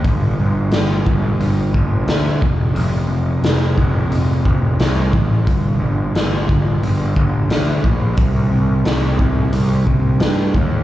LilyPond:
<<
  \new Staff \with { instrumentName = "Picked electric bass" } { \clef bass \time 4/4 \key g \minor \tempo 4 = 89 g,,8 g,,8 g,,8 g,,8 g,,8 g,,8 d,8 f,,8 | f,,8 f,,8 f,,8 f,,8 f,,8 f,,8 c,8 a,,8 | g,,8 g,,8 g,,8 g,,8 g,,8 g,,8 d,8 bes,,8 | c,8 c,8 c,8 c,8 c,8 c,8 g,8 ees,8 | }
  \new DrumStaff \with { instrumentName = "Drums" } \drummode { \time 4/4 <hho bd>4 <hho sn>8 bd8 hho8 bd8 <hho sn>8 bd8 | hho4 <hho sn>8 bd8 hho8 bd8 <hho sn>8 bd8 | <hho bd>4 <hho sn>8 bd8 hho8 bd8 <hho sn>8 bd8 | <hho bd>4 <hho sn>8 bd8 hho8 bd8 <hho sn>8 bd8 | }
>>